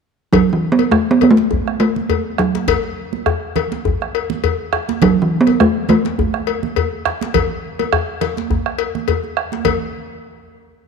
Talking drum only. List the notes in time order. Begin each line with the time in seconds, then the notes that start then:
0.33 F#3
0.53 E3
0.72 B3
0.91 A3
1.11 B3
1.23 B3
1.31 A3
1.80 A3
2.39 F#3
5.03 F#3
5.22 E3
5.41 B3
5.60 A3
5.90 A3